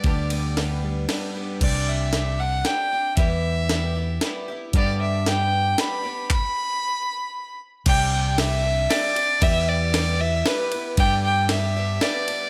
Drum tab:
CC |------|x-----|------|------|
RD |xxx-x-|------|------|------|
HH |------|x-x-x-|x-x-x-|x-x-x-|
CP |------|------|------|------|
SD |--o-o-|--o-o-|--o-o-|--o-o-|
BD |o-----|o-----|o-----|o-----|

CC |------|x-----|------|------|
RD |------|x-x-xx|x-x-xx|x-x-xx|
HH |------|------|------|------|
CP |x-----|------|------|------|
SD |------|--o-o-|--o-o-|--o-o-|
BD |o-----|o-----|o-----|o-----|